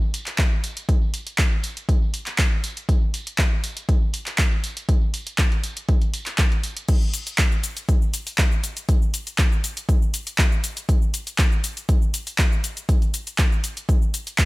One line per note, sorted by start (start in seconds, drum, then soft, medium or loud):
0.02 tambourine soft
0.14 open hi-hat loud
0.14 tambourine medium
0.26 clap soft
0.26 closed hi-hat medium
0.26 tambourine soft
0.38 kick loud
0.38 clap loud
0.38 closed hi-hat medium
0.52 tambourine soft
0.64 open hi-hat loud
0.64 tambourine medium
0.77 closed hi-hat medium
0.77 tambourine soft
0.89 kick loud
0.89 closed hi-hat medium
0.89 tambourine medium
1.02 tambourine soft
1.14 open hi-hat loud
1.14 tambourine medium
1.26 closed hi-hat medium
1.26 tambourine soft
1.38 kick loud
1.38 clap loud
1.38 closed hi-hat medium
1.53 tambourine soft
1.63 open hi-hat loud
1.63 tambourine medium
1.77 closed hi-hat medium
1.77 tambourine soft
1.89 kick loud
1.89 closed hi-hat medium
1.89 tambourine medium
2.02 tambourine soft
2.13 open hi-hat loud
2.13 tambourine medium
2.26 clap soft
2.26 closed hi-hat medium
2.26 tambourine soft
2.38 kick loud
2.38 clap loud
2.38 closed hi-hat medium
2.51 tambourine soft
2.64 open hi-hat loud
2.64 tambourine loud
2.76 closed hi-hat medium
2.76 tambourine soft
2.89 kick loud
2.89 closed hi-hat medium
2.89 tambourine medium
3.02 tambourine soft
3.14 open hi-hat loud
3.14 tambourine medium
3.27 closed hi-hat medium
3.27 tambourine soft
3.38 kick loud
3.38 clap loud
3.38 closed hi-hat medium
3.38 tambourine medium
3.52 tambourine soft
3.64 open hi-hat loud
3.64 tambourine medium
3.77 closed hi-hat medium
3.77 tambourine soft
3.89 kick loud
3.89 closed hi-hat medium
3.89 tambourine soft
4.02 tambourine soft
4.13 open hi-hat loud
4.13 tambourine medium
4.26 clap soft
4.26 closed hi-hat medium
4.26 tambourine soft
4.38 kick loud
4.38 clap loud
4.38 closed hi-hat medium
4.52 tambourine soft
4.64 open hi-hat loud
4.64 tambourine medium
4.77 closed hi-hat medium
4.77 tambourine soft
4.89 kick loud
4.89 closed hi-hat medium
5.01 tambourine soft
5.13 open hi-hat loud
5.13 tambourine medium
5.26 closed hi-hat medium
5.26 tambourine soft
5.38 kick loud
5.38 clap loud
5.38 closed hi-hat medium
5.52 closed hi-hat soft
5.52 tambourine soft
5.64 open hi-hat loud
5.64 tambourine medium
5.76 closed hi-hat medium
5.76 tambourine soft
5.88 kick loud
5.88 open hi-hat medium
5.88 tambourine medium
6.02 closed hi-hat soft
6.02 tambourine soft
6.14 open hi-hat loud
6.14 tambourine medium
6.26 clap soft
6.26 closed hi-hat medium
6.26 tambourine soft
6.38 kick loud
6.38 clap loud
6.38 closed hi-hat medium
6.38 tambourine medium
6.52 closed hi-hat soft
6.52 tambourine soft
6.64 open hi-hat loud
6.64 tambourine medium
6.77 closed hi-hat medium
6.77 tambourine soft
6.89 kick loud
6.89 closed hi-hat medium
6.89 crash loud
6.89 shaker soft
7.02 shaker soft
7.14 open hi-hat loud
7.14 shaker medium
7.27 closed hi-hat medium
7.27 shaker soft
7.38 kick loud
7.38 clap loud
7.38 closed hi-hat medium
7.38 shaker soft
7.52 shaker soft
7.64 open hi-hat loud
7.64 shaker medium
7.77 closed hi-hat medium
7.77 shaker soft
7.89 kick loud
7.89 closed hi-hat medium
7.89 shaker soft
8.02 shaker soft
8.14 open hi-hat loud
8.14 shaker medium
8.27 open hi-hat medium
8.27 shaker soft
8.38 kick loud
8.38 clap loud
8.38 closed hi-hat medium
8.38 shaker soft
8.52 shaker soft
8.64 open hi-hat loud
8.64 shaker medium
8.77 closed hi-hat medium
8.77 shaker soft
8.89 kick loud
8.89 closed hi-hat medium
8.89 shaker soft
9.02 shaker soft
9.14 open hi-hat loud
9.14 shaker medium
9.27 closed hi-hat medium
9.27 shaker soft
9.38 kick loud
9.38 clap loud
9.38 closed hi-hat medium
9.38 shaker soft
9.52 shaker soft
9.64 open hi-hat loud
9.64 shaker medium
9.77 closed hi-hat medium
9.77 shaker soft
9.89 kick loud
9.89 closed hi-hat medium
9.89 shaker soft
10.02 shaker soft
10.14 open hi-hat loud
10.14 shaker medium
10.27 closed hi-hat medium
10.27 shaker soft
10.38 kick loud
10.38 clap loud
10.38 closed hi-hat medium
10.38 shaker soft
10.52 shaker soft
10.64 open hi-hat loud
10.64 shaker medium
10.77 closed hi-hat medium
10.77 shaker soft
10.89 kick loud
10.89 closed hi-hat medium
10.89 shaker soft
11.02 shaker soft
11.14 open hi-hat loud
11.14 shaker medium
11.27 closed hi-hat medium
11.27 shaker soft
11.38 kick loud
11.38 clap loud
11.38 closed hi-hat medium
11.38 shaker soft
11.52 shaker soft
11.64 open hi-hat loud
11.64 shaker medium
11.77 closed hi-hat soft
11.77 shaker soft
11.89 kick loud
11.89 closed hi-hat medium
11.89 shaker soft
12.02 shaker soft
12.14 open hi-hat loud
12.14 shaker medium
12.27 open hi-hat medium
12.27 shaker soft
12.38 kick loud
12.38 clap loud
12.38 closed hi-hat medium
12.38 shaker soft
12.52 shaker soft
12.64 open hi-hat loud
12.64 shaker medium
12.77 closed hi-hat medium
12.77 shaker soft
12.89 kick loud
12.89 closed hi-hat medium
12.89 shaker soft
13.02 closed hi-hat soft
13.02 shaker soft
13.14 open hi-hat loud
13.14 shaker medium
13.27 closed hi-hat medium
13.27 shaker soft
13.38 kick loud
13.38 clap loud
13.38 closed hi-hat medium
13.38 shaker soft
13.52 shaker soft
13.64 open hi-hat loud
13.64 shaker medium
13.77 closed hi-hat soft
13.77 shaker soft
13.89 kick loud
13.89 closed hi-hat medium
13.89 shaker soft
14.02 shaker soft
14.14 open hi-hat loud
14.14 shaker medium
14.27 closed hi-hat medium
14.27 shaker soft
14.38 kick loud
14.38 clap loud
14.38 closed hi-hat medium
14.38 shaker soft